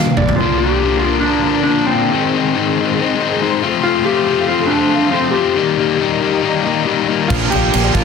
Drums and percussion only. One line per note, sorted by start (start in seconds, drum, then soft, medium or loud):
0.06 high tom medium
0.17 mid tom medium
0.29 floor tom medium
7.30 kick loud
7.30 crash loud
7.52 crash medium
7.74 crash medium
7.95 kick medium
7.95 crash medium